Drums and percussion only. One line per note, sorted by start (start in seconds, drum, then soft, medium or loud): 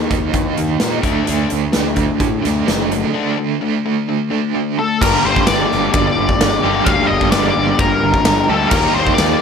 0.11 kick medium
0.11 closed hi-hat medium
0.33 kick medium
0.33 closed hi-hat medium
0.57 closed hi-hat medium
0.80 snare loud
0.80 closed hi-hat medium
1.03 kick medium
1.03 closed hi-hat medium
1.27 closed hi-hat medium
1.50 closed hi-hat medium
1.73 snare medium
1.73 closed hi-hat medium
1.96 kick medium
1.96 closed hi-hat medium
2.20 kick medium
2.20 closed hi-hat medium
2.45 snare soft
2.45 closed hi-hat medium
2.68 snare loud
2.68 closed hi-hat medium
2.91 closed hi-hat soft
5.02 kick loud
5.02 crash loud
5.36 kick medium
5.47 snare loud
5.47 ride bell medium
5.71 snare soft
5.93 kick loud
5.93 ride bell medium
6.29 kick medium
6.41 snare loud
6.41 ride bell medium
6.86 kick loud
6.86 ride bell medium
7.21 kick medium
7.32 snare loud
7.32 ride bell medium
7.79 kick loud
7.79 ride bell medium
8.14 kick medium
8.25 snare loud
8.25 ride bell medium
8.71 kick loud
8.71 crash loud
9.07 kick medium
9.18 snare loud
9.18 ride bell medium